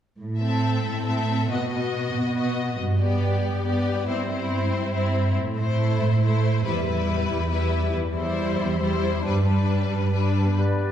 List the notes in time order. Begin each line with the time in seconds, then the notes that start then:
0.19 A2
0.40 C4 A4 E5
0.84 A2
1.06 C4 A4 E5
1.50 B2 B3 F#4 D#5
1.71 B3 F#4 D#5
2.15 B2
2.35 B3 F#4 D#5
2.79 G2
2.99 B3 G4 D5
3.44 G2
3.65 B3 G4 D5
4.06 G2 C4 E4 C5
4.27 E4 C5
4.32 C4
4.73 G2
4.93 C4 E4 C5
5.37 A2
5.57 A3 E4 C5
6.01 A2
6.22 A3 E4 C5
6.64 E2 G3 E4 B4
6.87 G3 E4 B4
7.30 E2
7.50 G3 E4 B4
7.94 E2
8.16 G3 E4 C5
8.59 E2
8.80 G3 E4 C5
9.25 G2 G3 D4 B4
9.46 G3 D4 B4
9.91 G2
10.11 G3 D4 B4
10.40 G2
10.44 B3
10.49 D4
10.53 G4
10.59 B4 D5